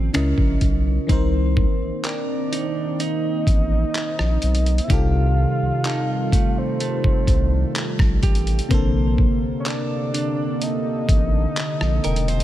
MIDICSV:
0, 0, Header, 1, 8, 480
1, 0, Start_track
1, 0, Tempo, 952381
1, 550, Time_signature, 4, 2, 24, 8
1, 6269, End_track
2, 0, Start_track
2, 0, Title_t, "Celesta"
2, 0, Program_c, 0, 8
2, 1029, Note_on_c, 0, 79, 60
2, 2402, Note_off_c, 0, 79, 0
2, 2949, Note_on_c, 0, 81, 74
2, 4321, Note_off_c, 0, 81, 0
2, 6070, Note_on_c, 0, 79, 80
2, 6269, Note_off_c, 0, 79, 0
2, 6269, End_track
3, 0, Start_track
3, 0, Title_t, "Soft synth lead"
3, 0, Program_c, 1, 80
3, 1037, Note_on_c, 1, 74, 90
3, 1519, Note_on_c, 1, 75, 119
3, 1527, Note_off_c, 1, 74, 0
3, 2439, Note_on_c, 1, 76, 85
3, 2447, Note_off_c, 1, 75, 0
3, 2475, Note_on_c, 1, 77, 127
3, 2482, Note_off_c, 1, 76, 0
3, 3316, Note_on_c, 1, 72, 95
3, 3324, Note_off_c, 1, 77, 0
3, 4153, Note_off_c, 1, 72, 0
3, 4839, Note_on_c, 1, 73, 67
3, 4875, Note_on_c, 1, 74, 98
3, 4883, Note_off_c, 1, 73, 0
3, 5357, Note_on_c, 1, 75, 118
3, 5364, Note_off_c, 1, 74, 0
3, 6269, Note_off_c, 1, 75, 0
3, 6269, End_track
4, 0, Start_track
4, 0, Title_t, "FM electric piano"
4, 0, Program_c, 2, 5
4, 0, Control_c, 2, 64, 127
4, 0, Note_on_c, 2, 65, 65
4, 0, Note_on_c, 2, 69, 67
4, 0, Note_on_c, 2, 74, 78
4, 52, Note_off_c, 2, 65, 0
4, 55, Note_off_c, 2, 69, 0
4, 58, Note_off_c, 2, 74, 0
4, 66, Note_on_c, 2, 49, 68
4, 70, Note_on_c, 2, 61, 62
4, 74, Note_on_c, 2, 64, 64
4, 77, Control_c, 2, 64, 0
4, 77, Note_on_c, 2, 70, 60
4, 80, Note_on_c, 2, 75, 73
4, 166, Control_c, 2, 64, 127
4, 538, Note_on_c, 2, 51, 83
4, 545, Note_on_c, 2, 60, 73
4, 548, Note_off_c, 2, 49, 0
4, 550, Note_off_c, 2, 61, 0
4, 552, Note_off_c, 2, 64, 0
4, 553, Note_on_c, 2, 63, 73
4, 554, Note_off_c, 2, 70, 0
4, 555, Note_off_c, 2, 75, 0
4, 557, Control_c, 2, 64, 0
4, 559, Note_on_c, 2, 70, 74
4, 566, Note_on_c, 2, 72, 92
4, 644, Control_c, 2, 64, 127
4, 2444, Note_off_c, 2, 51, 0
4, 2447, Note_off_c, 2, 60, 0
4, 2451, Note_off_c, 2, 63, 0
4, 2455, Note_off_c, 2, 70, 0
4, 2458, Note_off_c, 2, 72, 0
4, 2458, Note_on_c, 2, 48, 72
4, 2463, Note_on_c, 2, 60, 64
4, 2470, Note_on_c, 2, 63, 63
4, 2475, Note_on_c, 2, 65, 65
4, 2477, Control_c, 2, 64, 0
4, 2480, Note_on_c, 2, 67, 64
4, 2486, Note_on_c, 2, 69, 74
4, 2579, Control_c, 2, 64, 127
4, 4364, Note_off_c, 2, 48, 0
4, 4366, Note_off_c, 2, 60, 0
4, 4370, Note_off_c, 2, 63, 0
4, 4372, Note_off_c, 2, 65, 0
4, 4375, Note_off_c, 2, 67, 0
4, 4378, Note_off_c, 2, 69, 0
4, 4378, Note_on_c, 2, 48, 86
4, 4386, Note_on_c, 2, 58, 75
4, 4393, Note_on_c, 2, 60, 75
4, 4396, Control_c, 2, 64, 0
4, 4399, Note_on_c, 2, 50, 74
4, 4406, Note_on_c, 2, 69, 96
4, 4478, Control_c, 2, 64, 127
4, 6269, Note_off_c, 2, 48, 0
4, 6269, Note_off_c, 2, 50, 0
4, 6269, Note_off_c, 2, 58, 0
4, 6269, Note_off_c, 2, 60, 0
4, 6269, Note_off_c, 2, 69, 0
4, 6269, End_track
5, 0, Start_track
5, 0, Title_t, "Clean electric guitar"
5, 0, Program_c, 3, 27
5, 0, Note_on_c, 3, 50, 83
5, 0, Note_on_c, 3, 60, 57
5, 0, Note_on_c, 3, 65, 63
5, 0, Note_on_c, 3, 69, 66
5, 70, Note_off_c, 3, 60, 0
5, 72, Note_on_c, 3, 61, 76
5, 118, Note_off_c, 3, 50, 0
5, 118, Note_off_c, 3, 69, 0
5, 120, Note_off_c, 3, 65, 0
5, 550, Note_off_c, 3, 61, 0
5, 552, Note_on_c, 3, 60, 93
5, 1031, Note_on_c, 3, 70, 63
5, 1272, Note_on_c, 3, 63, 64
5, 1510, Note_off_c, 3, 63, 0
5, 1512, Note_on_c, 3, 63, 68
5, 2470, Note_off_c, 3, 70, 0
5, 2470, Note_on_c, 3, 48, 93
5, 2471, Note_off_c, 3, 60, 0
5, 2472, Note_on_c, 3, 67, 78
5, 2947, Note_off_c, 3, 63, 0
5, 2949, Note_on_c, 3, 63, 70
5, 3190, Note_on_c, 3, 57, 66
5, 3428, Note_off_c, 3, 57, 0
5, 3430, Note_on_c, 3, 57, 67
5, 4143, Note_off_c, 3, 67, 0
5, 4149, Note_on_c, 3, 67, 68
5, 4386, Note_off_c, 3, 57, 0
5, 4388, Note_on_c, 3, 58, 87
5, 4390, Note_off_c, 3, 48, 0
5, 4392, Note_on_c, 3, 72, 77
5, 4438, Note_off_c, 3, 63, 0
5, 4438, Note_off_c, 3, 67, 0
5, 4870, Note_on_c, 3, 69, 69
5, 5110, Note_on_c, 3, 62, 66
5, 5350, Note_off_c, 3, 62, 0
5, 6069, Note_off_c, 3, 72, 0
5, 6071, Note_on_c, 3, 70, 70
5, 6190, Note_off_c, 3, 70, 0
5, 6190, Note_on_c, 3, 72, 60
5, 6269, Note_off_c, 3, 58, 0
5, 6269, Note_off_c, 3, 69, 0
5, 6269, Note_off_c, 3, 72, 0
5, 6269, End_track
6, 0, Start_track
6, 0, Title_t, "Analog synth pad"
6, 0, Program_c, 4, 89
6, 554, Note_on_c, 4, 60, 77
6, 554, Note_on_c, 4, 63, 90
6, 555, Note_on_c, 4, 51, 85
6, 555, Note_on_c, 4, 58, 77
6, 2453, Note_off_c, 4, 51, 0
6, 2453, Note_off_c, 4, 58, 0
6, 2453, Note_off_c, 4, 60, 0
6, 2453, Note_off_c, 4, 63, 0
6, 2473, Note_on_c, 4, 51, 81
6, 2473, Note_on_c, 4, 65, 94
6, 2474, Note_on_c, 4, 69, 76
6, 2475, Note_on_c, 4, 55, 77
6, 4372, Note_off_c, 4, 51, 0
6, 4372, Note_off_c, 4, 65, 0
6, 4373, Note_off_c, 4, 55, 0
6, 4391, Note_on_c, 4, 58, 78
6, 4392, Note_on_c, 4, 48, 85
6, 4392, Note_on_c, 4, 50, 97
6, 6269, Note_off_c, 4, 48, 0
6, 6269, Note_off_c, 4, 50, 0
6, 6269, Note_off_c, 4, 58, 0
6, 6269, Note_off_c, 4, 69, 0
6, 6269, End_track
7, 0, Start_track
7, 0, Title_t, "Sub bass"
7, 0, Program_c, 5, 38
7, 77, Note_on_c, 5, 37, 101
7, 168, Note_off_c, 5, 37, 0
7, 192, Note_on_c, 5, 34, 91
7, 285, Note_off_c, 5, 34, 0
7, 312, Note_on_c, 5, 35, 92
7, 498, Note_off_c, 5, 35, 0
7, 553, Note_on_c, 5, 36, 99
7, 832, Note_off_c, 5, 36, 0
7, 916, Note_on_c, 5, 33, 51
7, 963, Note_off_c, 5, 33, 0
7, 1749, Note_on_c, 5, 33, 100
7, 1936, Note_off_c, 5, 33, 0
7, 2115, Note_on_c, 5, 34, 90
7, 2206, Note_off_c, 5, 34, 0
7, 2232, Note_on_c, 5, 35, 98
7, 2418, Note_off_c, 5, 35, 0
7, 2471, Note_on_c, 5, 36, 99
7, 2750, Note_off_c, 5, 36, 0
7, 2834, Note_on_c, 5, 36, 53
7, 2881, Note_off_c, 5, 36, 0
7, 3667, Note_on_c, 5, 36, 85
7, 3855, Note_off_c, 5, 36, 0
7, 4030, Note_on_c, 5, 34, 94
7, 4123, Note_off_c, 5, 34, 0
7, 4149, Note_on_c, 5, 33, 87
7, 4336, Note_off_c, 5, 33, 0
7, 4389, Note_on_c, 5, 34, 102
7, 4670, Note_off_c, 5, 34, 0
7, 4753, Note_on_c, 5, 33, 52
7, 4800, Note_off_c, 5, 33, 0
7, 5588, Note_on_c, 5, 33, 101
7, 5776, Note_off_c, 5, 33, 0
7, 5954, Note_on_c, 5, 34, 89
7, 6046, Note_off_c, 5, 34, 0
7, 6074, Note_on_c, 5, 28, 88
7, 6259, Note_off_c, 5, 28, 0
7, 6269, End_track
8, 0, Start_track
8, 0, Title_t, "Drums"
8, 72, Note_on_c, 9, 42, 65
8, 74, Note_on_c, 9, 26, 102
8, 122, Note_off_c, 9, 42, 0
8, 124, Note_off_c, 9, 26, 0
8, 190, Note_on_c, 9, 36, 92
8, 240, Note_off_c, 9, 36, 0
8, 308, Note_on_c, 9, 42, 60
8, 310, Note_on_c, 9, 36, 81
8, 358, Note_off_c, 9, 42, 0
8, 360, Note_off_c, 9, 36, 0
8, 551, Note_on_c, 9, 36, 120
8, 552, Note_on_c, 9, 42, 76
8, 601, Note_off_c, 9, 36, 0
8, 602, Note_off_c, 9, 42, 0
8, 790, Note_on_c, 9, 36, 98
8, 841, Note_off_c, 9, 36, 0
8, 1030, Note_on_c, 9, 42, 73
8, 1032, Note_on_c, 9, 39, 122
8, 1080, Note_off_c, 9, 42, 0
8, 1082, Note_off_c, 9, 39, 0
8, 1273, Note_on_c, 9, 42, 86
8, 1324, Note_off_c, 9, 42, 0
8, 1512, Note_on_c, 9, 42, 73
8, 1562, Note_off_c, 9, 42, 0
8, 1748, Note_on_c, 9, 36, 96
8, 1752, Note_on_c, 9, 42, 66
8, 1799, Note_off_c, 9, 36, 0
8, 1802, Note_off_c, 9, 42, 0
8, 1990, Note_on_c, 9, 42, 66
8, 1992, Note_on_c, 9, 39, 105
8, 2040, Note_off_c, 9, 42, 0
8, 2042, Note_off_c, 9, 39, 0
8, 2112, Note_on_c, 9, 37, 98
8, 2163, Note_off_c, 9, 37, 0
8, 2227, Note_on_c, 9, 46, 71
8, 2230, Note_on_c, 9, 42, 56
8, 2277, Note_off_c, 9, 46, 0
8, 2281, Note_off_c, 9, 42, 0
8, 2291, Note_on_c, 9, 42, 56
8, 2342, Note_off_c, 9, 42, 0
8, 2351, Note_on_c, 9, 42, 53
8, 2401, Note_off_c, 9, 42, 0
8, 2410, Note_on_c, 9, 42, 54
8, 2461, Note_off_c, 9, 42, 0
8, 2469, Note_on_c, 9, 36, 122
8, 2469, Note_on_c, 9, 42, 82
8, 2519, Note_off_c, 9, 36, 0
8, 2520, Note_off_c, 9, 42, 0
8, 2948, Note_on_c, 9, 42, 74
8, 2950, Note_on_c, 9, 39, 117
8, 2998, Note_off_c, 9, 42, 0
8, 3000, Note_off_c, 9, 39, 0
8, 3188, Note_on_c, 9, 36, 104
8, 3191, Note_on_c, 9, 42, 85
8, 3238, Note_off_c, 9, 36, 0
8, 3242, Note_off_c, 9, 42, 0
8, 3429, Note_on_c, 9, 42, 72
8, 3480, Note_off_c, 9, 42, 0
8, 3549, Note_on_c, 9, 36, 85
8, 3600, Note_off_c, 9, 36, 0
8, 3666, Note_on_c, 9, 36, 96
8, 3668, Note_on_c, 9, 42, 72
8, 3717, Note_off_c, 9, 36, 0
8, 3719, Note_off_c, 9, 42, 0
8, 3908, Note_on_c, 9, 42, 68
8, 3910, Note_on_c, 9, 39, 112
8, 3958, Note_off_c, 9, 42, 0
8, 3961, Note_off_c, 9, 39, 0
8, 4028, Note_on_c, 9, 36, 99
8, 4030, Note_on_c, 9, 37, 95
8, 4078, Note_off_c, 9, 36, 0
8, 4081, Note_off_c, 9, 37, 0
8, 4146, Note_on_c, 9, 46, 72
8, 4148, Note_on_c, 9, 36, 89
8, 4149, Note_on_c, 9, 42, 57
8, 4196, Note_off_c, 9, 46, 0
8, 4198, Note_off_c, 9, 36, 0
8, 4200, Note_off_c, 9, 42, 0
8, 4209, Note_on_c, 9, 42, 54
8, 4259, Note_off_c, 9, 42, 0
8, 4269, Note_on_c, 9, 42, 55
8, 4320, Note_off_c, 9, 42, 0
8, 4328, Note_on_c, 9, 42, 55
8, 4379, Note_off_c, 9, 42, 0
8, 4388, Note_on_c, 9, 36, 116
8, 4389, Note_on_c, 9, 42, 79
8, 4439, Note_off_c, 9, 36, 0
8, 4439, Note_off_c, 9, 42, 0
8, 4628, Note_on_c, 9, 36, 94
8, 4679, Note_off_c, 9, 36, 0
8, 4867, Note_on_c, 9, 42, 76
8, 4869, Note_on_c, 9, 39, 123
8, 4918, Note_off_c, 9, 42, 0
8, 4920, Note_off_c, 9, 39, 0
8, 5113, Note_on_c, 9, 42, 83
8, 5163, Note_off_c, 9, 42, 0
8, 5350, Note_on_c, 9, 42, 66
8, 5401, Note_off_c, 9, 42, 0
8, 5587, Note_on_c, 9, 36, 97
8, 5591, Note_on_c, 9, 42, 68
8, 5638, Note_off_c, 9, 36, 0
8, 5641, Note_off_c, 9, 42, 0
8, 5830, Note_on_c, 9, 42, 68
8, 5832, Note_on_c, 9, 39, 113
8, 5880, Note_off_c, 9, 42, 0
8, 5882, Note_off_c, 9, 39, 0
8, 5952, Note_on_c, 9, 37, 97
8, 6003, Note_off_c, 9, 37, 0
8, 6067, Note_on_c, 9, 46, 70
8, 6070, Note_on_c, 9, 42, 55
8, 6118, Note_off_c, 9, 46, 0
8, 6121, Note_off_c, 9, 42, 0
8, 6130, Note_on_c, 9, 42, 56
8, 6181, Note_off_c, 9, 42, 0
8, 6191, Note_on_c, 9, 42, 54
8, 6241, Note_off_c, 9, 42, 0
8, 6251, Note_on_c, 9, 42, 56
8, 6269, Note_off_c, 9, 42, 0
8, 6269, End_track
0, 0, End_of_file